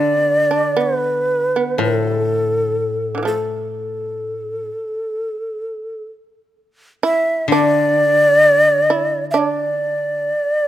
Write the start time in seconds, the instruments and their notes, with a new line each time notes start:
Already playing: koto D3, shamisen D4, shakuhachi D5
0.24 shamisen B3
0.51 shamisen D4
0.77 shamisen B3
0.81 shakuhachi B4
1.56 shamisen B3
1.78 koto A2, shamisen F3, shakuhachi A4
2.25 shamisen A3
3.15 shamisen D3 E3
3.23 shamisen F3 A3
3.27 shakuhachi A4
7.03 shamisen E4, shakuhachi E5
7.48 koto D3, shakuhachi D5
7.52 shamisen D4
8.90 shamisen E4
9.31 shamisen D4, shakuhachi E5
9.38 shakuhachi D5